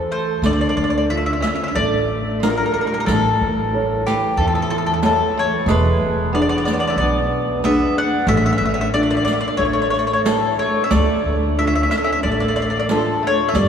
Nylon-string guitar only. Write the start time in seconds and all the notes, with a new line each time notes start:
Already playing: A4 C5
0.44 D3
1.12 D4 E4 F4
1.77 A3
2.42 D4 E4 F4
3.08 A3
3.73 E4 A4 C#5
4.39 E3
5.03 E4 A4 C#5
5.69 E3
6.34 D4 E4 G#4
6.99 B2
7.65 D4 E4 G#4
8.29 A3
8.94 D4 F4 A4
9.60 A3
10.24 E4 A4 C#5
10.92 D3
11.58 D4 F4 A4
12.25 A3
12.90 D4 F4 A4
13.55 G3